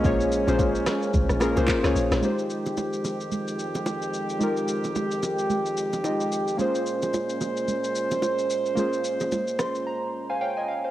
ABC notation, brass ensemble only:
X:1
M:4/4
L:1/8
Q:"Swing 16ths" 1/4=110
K:Fm
V:1 name="Brass ensemble" clef=bass
[A,B,D]8 | [F,,E,A,G]8- | [F,,E,A,G]8 | [B,,A,Dc]8- |
[B,,A,Dc]8 |]